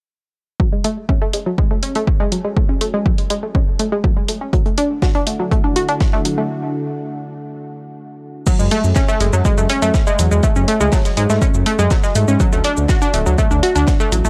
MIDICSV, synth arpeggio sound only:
0, 0, Header, 1, 2, 480
1, 0, Start_track
1, 0, Key_signature, 3, "minor"
1, 0, Tempo, 491803
1, 583, Time_signature, 4, 2, 24, 8
1, 13953, End_track
2, 0, Start_track
2, 0, Title_t, "Synth arpeggio sound"
2, 0, Program_c, 0, 84
2, 583, Note_on_c, 0, 54, 79
2, 678, Note_off_c, 0, 54, 0
2, 707, Note_on_c, 0, 56, 71
2, 818, Note_off_c, 0, 56, 0
2, 824, Note_on_c, 0, 57, 100
2, 880, Note_off_c, 0, 57, 0
2, 1063, Note_on_c, 0, 61, 79
2, 1158, Note_off_c, 0, 61, 0
2, 1188, Note_on_c, 0, 57, 95
2, 1277, Note_off_c, 0, 57, 0
2, 1305, Note_on_c, 0, 56, 75
2, 1361, Note_off_c, 0, 56, 0
2, 1428, Note_on_c, 0, 54, 74
2, 1517, Note_off_c, 0, 54, 0
2, 1545, Note_on_c, 0, 56, 89
2, 1639, Note_off_c, 0, 56, 0
2, 1668, Note_on_c, 0, 57, 75
2, 1757, Note_off_c, 0, 57, 0
2, 1785, Note_on_c, 0, 61, 95
2, 1841, Note_off_c, 0, 61, 0
2, 1908, Note_on_c, 0, 57, 100
2, 1997, Note_off_c, 0, 57, 0
2, 2147, Note_on_c, 0, 56, 99
2, 2237, Note_off_c, 0, 56, 0
2, 2264, Note_on_c, 0, 54, 74
2, 2320, Note_off_c, 0, 54, 0
2, 2386, Note_on_c, 0, 56, 76
2, 2476, Note_off_c, 0, 56, 0
2, 2504, Note_on_c, 0, 57, 82
2, 2598, Note_off_c, 0, 57, 0
2, 2626, Note_on_c, 0, 61, 71
2, 2680, Note_off_c, 0, 61, 0
2, 2743, Note_on_c, 0, 57, 97
2, 2800, Note_off_c, 0, 57, 0
2, 2867, Note_on_c, 0, 56, 99
2, 2978, Note_off_c, 0, 56, 0
2, 2984, Note_on_c, 0, 54, 82
2, 3100, Note_off_c, 0, 54, 0
2, 3224, Note_on_c, 0, 56, 99
2, 3280, Note_off_c, 0, 56, 0
2, 3348, Note_on_c, 0, 57, 76
2, 3437, Note_off_c, 0, 57, 0
2, 3464, Note_on_c, 0, 61, 77
2, 3558, Note_off_c, 0, 61, 0
2, 3704, Note_on_c, 0, 57, 96
2, 3760, Note_off_c, 0, 57, 0
2, 3828, Note_on_c, 0, 56, 97
2, 3938, Note_off_c, 0, 56, 0
2, 3944, Note_on_c, 0, 54, 76
2, 4000, Note_off_c, 0, 54, 0
2, 4067, Note_on_c, 0, 56, 77
2, 4120, Note_off_c, 0, 56, 0
2, 4184, Note_on_c, 0, 57, 74
2, 4278, Note_off_c, 0, 57, 0
2, 4307, Note_on_c, 0, 61, 74
2, 4396, Note_off_c, 0, 61, 0
2, 4424, Note_on_c, 0, 54, 83
2, 4518, Note_off_c, 0, 54, 0
2, 4546, Note_on_c, 0, 57, 72
2, 4657, Note_off_c, 0, 57, 0
2, 4664, Note_on_c, 0, 62, 102
2, 4720, Note_off_c, 0, 62, 0
2, 4904, Note_on_c, 0, 66, 80
2, 4998, Note_off_c, 0, 66, 0
2, 5027, Note_on_c, 0, 62, 98
2, 5116, Note_off_c, 0, 62, 0
2, 5143, Note_on_c, 0, 57, 74
2, 5200, Note_off_c, 0, 57, 0
2, 5266, Note_on_c, 0, 54, 76
2, 5356, Note_off_c, 0, 54, 0
2, 5382, Note_on_c, 0, 57, 93
2, 5477, Note_off_c, 0, 57, 0
2, 5505, Note_on_c, 0, 62, 77
2, 5595, Note_off_c, 0, 62, 0
2, 5622, Note_on_c, 0, 66, 98
2, 5680, Note_off_c, 0, 66, 0
2, 5745, Note_on_c, 0, 62, 99
2, 5836, Note_off_c, 0, 62, 0
2, 5985, Note_on_c, 0, 57, 99
2, 6075, Note_off_c, 0, 57, 0
2, 6103, Note_on_c, 0, 54, 72
2, 6160, Note_off_c, 0, 54, 0
2, 6226, Note_on_c, 0, 57, 75
2, 6316, Note_off_c, 0, 57, 0
2, 8263, Note_on_c, 0, 54, 80
2, 8358, Note_off_c, 0, 54, 0
2, 8387, Note_on_c, 0, 56, 74
2, 8498, Note_off_c, 0, 56, 0
2, 8504, Note_on_c, 0, 57, 102
2, 8561, Note_off_c, 0, 57, 0
2, 8743, Note_on_c, 0, 61, 85
2, 8838, Note_off_c, 0, 61, 0
2, 8867, Note_on_c, 0, 57, 101
2, 8956, Note_off_c, 0, 57, 0
2, 8984, Note_on_c, 0, 56, 76
2, 9040, Note_off_c, 0, 56, 0
2, 9107, Note_on_c, 0, 54, 80
2, 9196, Note_off_c, 0, 54, 0
2, 9224, Note_on_c, 0, 56, 93
2, 9318, Note_off_c, 0, 56, 0
2, 9347, Note_on_c, 0, 57, 75
2, 9436, Note_off_c, 0, 57, 0
2, 9463, Note_on_c, 0, 61, 100
2, 9520, Note_off_c, 0, 61, 0
2, 9587, Note_on_c, 0, 57, 97
2, 9676, Note_off_c, 0, 57, 0
2, 9827, Note_on_c, 0, 56, 102
2, 9916, Note_off_c, 0, 56, 0
2, 9944, Note_on_c, 0, 54, 74
2, 10000, Note_off_c, 0, 54, 0
2, 10066, Note_on_c, 0, 56, 78
2, 10156, Note_off_c, 0, 56, 0
2, 10184, Note_on_c, 0, 57, 85
2, 10278, Note_off_c, 0, 57, 0
2, 10307, Note_on_c, 0, 61, 74
2, 10361, Note_off_c, 0, 61, 0
2, 10424, Note_on_c, 0, 57, 103
2, 10480, Note_off_c, 0, 57, 0
2, 10545, Note_on_c, 0, 56, 99
2, 10657, Note_off_c, 0, 56, 0
2, 10663, Note_on_c, 0, 54, 80
2, 10780, Note_off_c, 0, 54, 0
2, 10903, Note_on_c, 0, 56, 100
2, 10960, Note_off_c, 0, 56, 0
2, 11027, Note_on_c, 0, 57, 79
2, 11116, Note_off_c, 0, 57, 0
2, 11143, Note_on_c, 0, 61, 78
2, 11238, Note_off_c, 0, 61, 0
2, 11383, Note_on_c, 0, 57, 96
2, 11440, Note_off_c, 0, 57, 0
2, 11506, Note_on_c, 0, 56, 103
2, 11617, Note_off_c, 0, 56, 0
2, 11623, Note_on_c, 0, 54, 82
2, 11680, Note_off_c, 0, 54, 0
2, 11747, Note_on_c, 0, 56, 77
2, 11800, Note_off_c, 0, 56, 0
2, 11863, Note_on_c, 0, 57, 74
2, 11958, Note_off_c, 0, 57, 0
2, 11986, Note_on_c, 0, 61, 76
2, 12076, Note_off_c, 0, 61, 0
2, 12102, Note_on_c, 0, 54, 83
2, 12197, Note_off_c, 0, 54, 0
2, 12226, Note_on_c, 0, 57, 74
2, 12337, Note_off_c, 0, 57, 0
2, 12342, Note_on_c, 0, 62, 102
2, 12400, Note_off_c, 0, 62, 0
2, 12582, Note_on_c, 0, 66, 84
2, 12677, Note_off_c, 0, 66, 0
2, 12705, Note_on_c, 0, 62, 101
2, 12796, Note_off_c, 0, 62, 0
2, 12823, Note_on_c, 0, 57, 75
2, 12880, Note_off_c, 0, 57, 0
2, 12945, Note_on_c, 0, 54, 78
2, 13036, Note_off_c, 0, 54, 0
2, 13062, Note_on_c, 0, 57, 93
2, 13157, Note_off_c, 0, 57, 0
2, 13184, Note_on_c, 0, 62, 76
2, 13275, Note_off_c, 0, 62, 0
2, 13302, Note_on_c, 0, 66, 98
2, 13359, Note_off_c, 0, 66, 0
2, 13424, Note_on_c, 0, 62, 102
2, 13515, Note_off_c, 0, 62, 0
2, 13665, Note_on_c, 0, 57, 104
2, 13755, Note_off_c, 0, 57, 0
2, 13782, Note_on_c, 0, 54, 76
2, 13839, Note_off_c, 0, 54, 0
2, 13905, Note_on_c, 0, 57, 78
2, 13953, Note_off_c, 0, 57, 0
2, 13953, End_track
0, 0, End_of_file